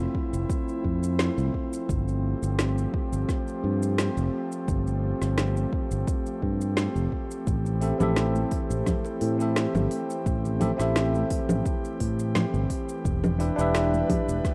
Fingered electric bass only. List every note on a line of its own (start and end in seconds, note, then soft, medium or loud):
0.33 0.44 F1 medium
0.84 1.28 F2 medium
1.38 1.49 C2 medium
1.89 2.33 G1 medium
2.42 2.85 G1 medium
3.12 3.23 G1 medium
3.64 4.08 G2 medium
4.17 4.28 F1 loud
4.68 5.12 G1 medium
5.22 5.64 G1 medium
5.91 6.02 G1 medium
6.42 6.87 G2 medium
6.96 7.07 F1 medium
7.47 7.91 A1 medium
8.01 8.44 A1 medium
8.70 8.81 A1 medium
9.21 9.65 A2 medium
9.75 9.86 G1 medium
10.26 10.70 A1 medium
10.79 11.22 A1 medium
11.49 11.60 A1 medium
12.01 12.45 A2 medium
12.54 12.65 G1 medium
13.05 13.49 E1 medium
13.58 14.02 E1 medium
14.28 14.40 E1 medium